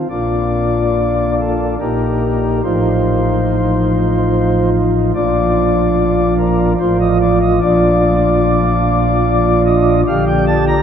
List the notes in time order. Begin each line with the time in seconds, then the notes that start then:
0.10 A#1 A#2 A#3 D4 F4 D5
1.38 A4
1.80 A#1 A#2 A#3 D#4 G4 A#4
2.63 A1 A2 F3 D#4 F4 C5
5.15 A#1 A#2 F3 D4 F4 D5
6.38 A#4
6.80 A1 A2 F3 F4 C5
7.00 D#5
7.22 D5
7.41 D#5
7.61 A#1 A#2 F3 D4 F4 D5
9.66 D#5
10.07 A#1 A#2 D3 D4 G4 F5
10.27 G5
10.47 A5
10.68 A#5